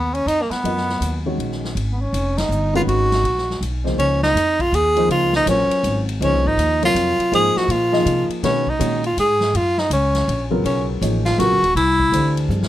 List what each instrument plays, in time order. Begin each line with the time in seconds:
Already playing: upright bass D#2, tenor saxophone B3
0.15 tenor saxophone C#4, ride
0.26 upright bass F2, tenor saxophone D#4, hi-hat pedal, ride
0.42 tenor saxophone A#3
0.50 tenor saxophone B3, muted upright bass stroke, snare, ride
0.63 upright bass F#2, grand piano F#3 B3 F4 A#4 D#5, ride
0.77 snare
0.89 snare
1.00 upright bass D#2, hi-hat pedal, ride
1.26 grand piano D#3 G#3 C#4 F#4 C#5
1.38 upright bass A#1, ride
1.52 snare
1.64 snare
1.75 upright bass G#1, ride
1.92 tenor saxophone B3
2.01 tenor saxophone C#4
2.13 upright bass F1, hi-hat pedal, ride
2.38 tenor saxophone D#4, snare, ride
2.49 upright bass G1, hi-hat pedal
2.74 grand piano D#3 G#3 C#4 F#4 B4, tenor saxophone F4, ride
2.87 upright bass G#1, tenor saxophone F#4, ride
3.12 snare, ride
3.23 upright bass A#1, ride
3.38 snare
3.50 snare
3.61 upright bass B1, hi-hat pedal, ride
3.84 grand piano C#2 F3 A#3 D#4 G#4 C5, snare
3.98 upright bass C#2, tenor saxophone C#4, ride
4.23 tenor saxophone D#4, snare
4.34 upright bass F2, hi-hat pedal, ride
4.60 tenor saxophone F4, kick, ride
4.72 upright bass D#2, tenor saxophone G#4, hi-hat pedal, ride
4.96 grand piano F3 A#3 D#4 G#4 C5, ride
5.09 upright bass C#2, tenor saxophone F4, ride
5.33 tenor saxophone D#4, snare
5.46 upright bass A#1, grand piano F#3 F4 A#4 C5 C#5, tenor saxophone C#4, hi-hat pedal, ride
5.69 muted upright bass stroke, ride
5.83 upright bass G#1, hi-hat pedal, ride
6.09 ride
6.21 upright bass C#2, grand piano F3 A#3 D#4 G#4 C5, tenor saxophone C#4, ride
6.33 upright bass C2
6.45 upright bass G#1, tenor saxophone D#4
6.57 upright bass D#2, hi-hat pedal, ride
6.82 grand piano C3 F#3 F4 A#4 C#5, tenor saxophone F4, ride
6.94 upright bass F2, hi-hat pedal, ride
7.19 muted upright bass stroke, ride
7.32 upright bass G#2, grand piano F3 A#3 D#4 G#4 C5, tenor saxophone G#4, ride
7.56 tenor saxophone F#4, muted upright bass stroke, snare
7.68 upright bass A#2, tenor saxophone F4, ride
7.92 grand piano F3 A#3 D#4 G#4 D#5, snare
8.06 upright bass C3, hi-hat pedal, ride
8.29 muted upright bass stroke, ride
8.43 upright bass B2, grand piano D#3 G#3 C#4 F#4 B4, tenor saxophone C#4, snare, ride
8.67 tenor saxophone D#4, kick
8.79 upright bass A#2, grand piano D#3 G#3 C#4 F#4 C#5, hi-hat pedal, ride
9.04 tenor saxophone F4, ride
9.17 upright bass G#2, tenor saxophone G#4, hi-hat pedal, ride
9.41 snare
9.54 upright bass F#2, tenor saxophone F4, ride
9.78 tenor saxophone D#4, snare
9.90 upright bass C#2, tenor saxophone C#4, hi-hat pedal, ride
10.14 snare, ride
10.28 upright bass A#1, ride
10.50 grand piano C#3 F#3 B3 F4 A#4
10.64 upright bass B1, tenor saxophone C#4, ride
11.01 upright bass A1, grand piano F3 A#3 D#4 G#4 C#5, hi-hat pedal, ride
11.26 tenor saxophone F4, snare, ride
11.38 upright bass A#1, grand piano C#3 F#3 B3 F4 A#4, tenor saxophone F#4, hi-hat pedal, ride
11.51 upright bass F#1
11.63 upright bass D#1, ride
11.75 upright bass C2, tenor saxophone E4, ride
12.00 kick
12.12 upright bass D2, grand piano E3 A3 D4 G4 C5, hi-hat pedal, ride
12.37 ride
12.48 upright bass G2, hi-hat pedal, high tom
12.61 upright bass E2, snare